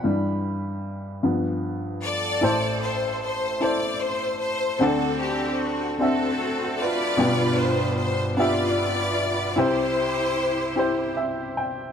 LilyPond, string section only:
\new Staff \with { instrumentName = "String section" } { \time 6/8 \key g \mixolydian \tempo 4. = 50 << { r2 r8 d''8~ | d''8 c''8 c''8 d''8 c''8 c''8 | a'8 g'8 fis'8 a'4 d''8~ | d''8 c''8 c''8 d''4. |
c''2 r4 | } \\ { r2 r8 a'8~ | a'4 r2 | <c' fis'>4. <c' fis'>4 <f' b'>8~ | <f' b'>4 r8 <f' b'>4. |
<e' g'>2 r4 | } >> }